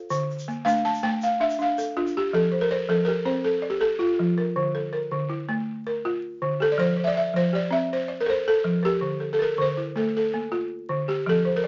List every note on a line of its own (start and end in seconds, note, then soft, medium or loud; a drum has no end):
0.00 0.29 F4 medium
0.00 0.10 A4 medium
0.00 0.10 C5 medium
0.10 0.48 D3 medium
0.10 shaker medium
0.30 shaker soft
0.39 shaker medium
0.48 1.03 A#3 medium
0.48 shaker soft
0.65 1.02 A3 medium
0.65 1.22 D4 medium
0.65 0.85 F5 medium
0.65 shaker medium
0.85 1.02 A5 medium
0.85 shaker soft
0.94 shaker soft
1.03 1.40 A3 medium
1.03 1.22 G5 medium
1.21 1.42 F5 medium
1.21 shaker medium
1.40 1.58 D4 medium
1.40 1.58 E5 medium
1.50 shaker soft
1.59 1.96 D4 medium
1.59 1.78 F5 medium
1.59 shaker soft
1.78 2.33 A4 medium
1.78 shaker medium
1.97 2.52 D4 medium
1.97 2.33 F4 medium
2.07 shaker soft
2.17 2.35 G4 medium
2.33 2.70 F3 medium
2.33 2.62 A4 medium
2.52 3.07 C5 medium
2.61 2.70 A#4 medium
2.71 2.88 C5 medium
2.71 3.26 D5 medium
2.89 3.26 F3 medium
2.89 3.08 A4 medium
3.05 3.63 G4 medium
3.05 3.25 A#4 medium
3.25 3.63 C4 medium
3.25 3.34 C5 medium
3.44 3.73 A4 medium
3.62 4.18 D5 medium
3.70 3.81 G4 medium
3.81 4.18 A4 medium
3.81 4.00 A4 medium
3.99 4.38 F4 medium
4.19 4.56 F3 medium
4.38 4.75 A#4 medium
4.56 4.93 D3 medium
4.75 5.30 A4 medium
4.93 5.49 A#4 medium
5.11 5.49 D3 medium
5.29 5.86 E4 medium
5.49 5.86 A3 medium
5.87 6.42 A#4 medium
6.05 6.42 F4 medium
6.42 6.79 D3 medium
6.60 6.98 G4 medium
6.60 6.73 A4 medium
6.72 6.79 D5 medium
6.78 7.16 F3 medium
6.78 7.03 C5 loud
6.97 7.53 C5 medium
7.04 7.11 D5 medium
7.04 7.07 E5 medium
7.15 7.72 D5 medium
7.15 7.36 E5 medium
7.34 7.72 F3 medium
7.34 7.53 C5 loud
7.53 8.09 G4 medium
7.53 7.72 D5 medium
7.71 8.09 C4 medium
7.71 7.92 E5 medium
7.93 8.18 C5 medium
8.08 8.65 D5 medium
8.20 8.28 A#4 medium
8.26 8.65 A4 medium
8.26 8.48 C5 medium
8.48 8.86 A4 loud
8.64 9.02 F3 medium
8.83 9.33 G4 medium
8.83 9.21 A#4 medium
9.01 9.39 D3 medium
9.20 9.77 A4 medium
9.33 9.41 A4 medium
9.39 9.95 A#4 medium
9.39 9.60 A#4 medium
9.58 9.96 D3 medium
9.58 9.98 C5 medium
9.77 10.33 E4 medium
9.96 10.33 A3 medium
9.96 10.05 A4 medium
10.17 11.11 A4 medium
10.34 10.89 A#3 medium
10.52 10.89 F4 medium
10.89 11.26 D3 medium
11.08 11.45 G4 medium
11.08 11.27 G4 medium
11.26 11.64 F3 medium
11.26 11.56 A4 medium
11.45 11.67 C5 medium
11.56 11.65 A#4 medium
11.64 11.67 D5 medium